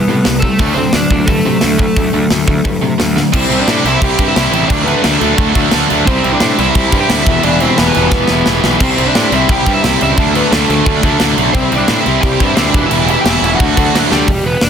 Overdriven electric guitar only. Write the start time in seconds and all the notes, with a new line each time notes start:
Already playing: B3 B4
0.40 A4
0.44 A3
0.74 C4 C5
0.92 D4 D5
1.26 A3 A4
3.34 C4 C5
3.60 D4 D5
3.86 E4 E5
4.02 G4 G5
4.28 E4 E5
4.53 E4 E5
4.68 D4 D5
4.84 B3 B4
5.01 A3 A4
6.06 C4 C5
6.33 D4 D5
6.59 E4 E5
7.01 G4 G5
7.12 E4 E5
7.44 D4 D5
7.61 C4 C5
7.78 B3 B4
8.81 C4 C5
9.06 D4 D5
9.34 E4 E5
9.51 G4 G5
9.74 E4 E5
10.03 E4 E5
10.20 D4 D5
10.36 B3 B4
10.51 A3 A4
11.53 C4 C5
11.76 D4 D5
12.01 E4 E5
12.21 G4 G5
12.47 E4 E5
12.55 C4 C5
12.62 D5
12.67 D4
12.86 E4 E5
13.21 G4 G5
13.29 E4 E5
13.55 F#4 F#5
14.11 G3 G4
14.46 B3 B4
14.63 D4 D5